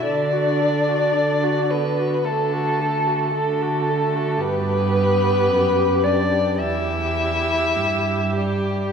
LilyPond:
<<
  \new Staff \with { instrumentName = "Violin" } { \time 4/4 \key d \major \tempo 4 = 54 d''4. b'8 a'4 a'4 | \key e \dorian b'4. d''8 e''4. g'8 | }
  \new Staff \with { instrumentName = "Viola" } { \time 4/4 \key d \major a'16 fis'16 a'16 fis'16 a'16 fis'16 a'16 fis'16 a'16 fis'16 a'16 fis'16 a'16 fis'16 a'16 fis'16 | \key e \dorian g'2 g'2 | }
  \new Staff \with { instrumentName = "Violin" } { \time 4/4 \key d \major d'4. b8 a4 a4 | \key e \dorian b4. d'8 e'4. g8 | }
  \new Staff \with { instrumentName = "Cello" } { \clef bass \time 4/4 \key d \major d4 d4 d4 d4 | \key e \dorian g,4 fis,4 e,4 g,4 | }
>>